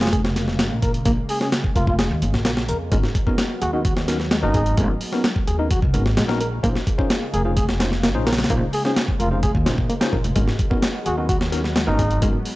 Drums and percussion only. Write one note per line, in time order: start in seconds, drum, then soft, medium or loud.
0.01 snare medium
0.01 closed hi-hat medium
0.07 snare medium
0.07 closed hi-hat medium
0.13 kick loud
0.13 closed hi-hat medium
0.25 snare medium
0.36 snare soft
0.36 closed hi-hat medium
0.48 snare soft
0.59 snare loud
0.59 closed hi-hat medium
0.82 kick loud
0.82 closed hi-hat medium
0.94 closed hi-hat soft
1.05 kick loud
1.05 closed hi-hat medium
1.29 open hi-hat medium
1.41 snare soft
1.52 snare loud
1.52 closed hi-hat medium
1.64 kick medium
1.76 kick medium
1.76 closed hi-hat medium
1.87 kick medium
1.99 snare loud
1.99 closed hi-hat medium
2.22 closed hi-hat medium
2.34 snare soft
2.45 snare loud
2.45 closed hi-hat medium
2.57 snare medium
2.68 closed hi-hat medium
2.92 kick loud
2.92 closed hi-hat medium
3.03 snare soft
3.15 kick loud
3.15 closed hi-hat medium
3.27 kick loud
3.38 snare loud
3.38 closed hi-hat medium
3.62 closed hi-hat medium
3.85 kick loud
3.85 closed hi-hat medium
3.97 snare medium
4.08 snare soft
4.08 closed hi-hat medium
4.20 snare soft
4.31 snare loud
4.31 closed hi-hat medium
4.54 kick loud
4.54 closed hi-hat medium
4.66 closed hi-hat soft
4.77 kick loud
4.77 closed hi-hat medium
5.01 open hi-hat medium
5.13 snare soft
5.24 snare loud
5.24 closed hi-hat medium
5.36 kick medium
5.47 closed hi-hat medium
5.71 kick loud
5.71 closed hi-hat medium
5.82 kick loud
5.94 closed hi-hat medium
6.06 snare medium
6.17 snare loud
6.17 closed hi-hat medium
6.29 snare medium
6.41 closed hi-hat medium
6.64 kick loud
6.64 closed hi-hat medium
6.75 snare soft
6.87 kick loud
6.87 closed hi-hat medium
6.99 kick loud
7.10 snare loud
7.10 closed hi-hat medium
7.34 closed hi-hat medium
7.57 kick loud
7.57 closed hi-hat medium
7.69 snare medium
7.80 snare loud
7.80 closed hi-hat medium
7.92 snare soft
8.03 snare loud
8.03 closed hi-hat medium
8.27 snare loud
8.27 closed hi-hat medium
8.33 snare medium
8.33 closed hi-hat medium
8.38 snare medium
8.38 closed hi-hat medium
8.44 snare medium
8.44 closed hi-hat medium
8.50 kick loud
8.50 closed hi-hat medium
8.73 open hi-hat medium
8.85 snare soft
8.96 snare loud
8.96 closed hi-hat medium
9.08 kick medium
9.20 closed hi-hat medium
9.43 kick loud
9.43 closed hi-hat medium
9.55 kick loud
9.66 snare loud
9.66 closed hi-hat medium
9.78 kick medium
9.90 closed hi-hat medium
10.01 snare loud
10.01 closed hi-hat medium
10.13 kick medium
10.24 closed hi-hat medium
10.36 kick loud
10.36 closed hi-hat medium
10.48 snare soft
10.59 kick loud
10.59 closed hi-hat medium
10.71 kick loud
10.82 snare loud
10.82 closed hi-hat medium
11.06 closed hi-hat medium
11.29 kick loud
11.29 closed hi-hat medium
11.41 snare medium
11.52 snare soft
11.52 closed hi-hat medium
11.64 snare soft
11.76 snare loud
11.76 closed hi-hat medium
11.99 kick loud
11.99 closed hi-hat medium
12.11 closed hi-hat soft
12.22 kick loud
12.22 closed hi-hat medium
12.45 open hi-hat medium